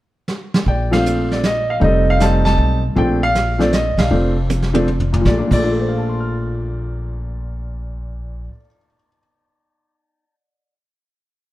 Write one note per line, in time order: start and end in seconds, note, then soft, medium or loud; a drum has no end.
0.28 snare medium
0.54 snare medium
0.66 1.77 A#1 medium
0.66 1.28 D5 medium
0.66 0.93 G5 medium
0.66 brush sweep soft
0.66 kick soft
0.91 1.40 F3 medium
0.91 1.40 A3 medium
0.91 1.40 C4 medium
0.91 1.41 D4 medium
0.91 1.28 F5 medium
0.91 snare medium
0.91 ride medium
1.06 hi-hat pedal medium
1.32 1.44 D5 medium
1.32 snare soft
1.43 1.71 D#5 medium
1.43 snare medium
1.43 hi-hat pedal medium
1.70 1.75 F5 medium
1.80 2.54 F1 medium
1.80 2.18 G3 medium
1.80 2.18 A3 soft
1.80 2.18 C4 medium
1.80 2.19 D#4 medium
1.80 brush sweep soft
1.80 kick soft
1.84 2.44 A4 medium
1.84 2.09 D#5 medium
2.10 2.22 F5 medium
2.19 2.78 G3 medium
2.19 2.79 A3 soft
2.19 2.79 C4 medium
2.19 2.80 D#4 medium
2.19 2.44 A5 medium
2.19 snare medium
2.19 hi-hat pedal medium
2.45 2.81 A5 loud
2.45 snare soft
2.58 2.94 B1 medium
2.95 3.95 A#1 medium
2.95 3.19 F3 medium
2.95 3.19 A3 medium
2.95 3.20 C4 medium
2.95 3.20 D4 medium
2.95 3.57 D5 medium
2.95 3.24 G5 medium
2.95 brush sweep soft
2.95 kick soft
3.23 3.58 F5 loud
3.35 snare medium
3.35 hi-hat pedal soft
3.58 3.71 F3 medium
3.58 3.71 A3 medium
3.58 3.71 C4 medium
3.58 3.72 D4 medium
3.58 snare soft
3.62 3.73 D5 medium
3.73 4.00 D#5 medium
3.73 snare medium
3.73 hi-hat pedal soft
3.97 4.10 B1 medium
3.97 5.10 D5 soft
3.97 5.10 F5 medium
3.97 snare medium
3.97 ride medium
4.10 5.22 F1 medium
4.10 4.34 F3 soft
4.10 4.34 A3 medium
4.10 4.34 C4 medium
4.10 4.34 D4 medium
4.10 brush sweep soft
4.49 hi-hat pedal medium
4.49 high tom soft
4.62 snare soft
4.73 4.86 F3 medium
4.73 4.86 A3 medium
4.73 4.86 C4 medium
4.73 4.87 D4 medium
4.73 high tom medium
4.88 floor tom medium
5.00 floor tom medium
5.12 5.35 A#2 medium
5.12 floor tom medium
5.21 5.39 F3 medium
5.25 5.40 A#1 medium
5.25 5.43 A3 soft
5.25 5.41 D5 medium
5.25 kick soft
5.25 snare medium
5.38 8.39 A#2 medium
5.38 5.47 D4 medium
5.47 8.47 A#1 medium
5.47 8.48 F3 medium
5.51 8.50 D5 medium
5.51 kick medium
5.51 crash medium
5.56 8.57 A3 medium
5.64 8.64 D4 medium
5.64 8.60 F4 soft
5.71 8.68 A4 soft
5.80 8.76 C5 soft
5.88 8.85 F5 soft
5.98 8.95 A5 soft
6.09 9.06 C6 soft
6.20 9.17 F6 soft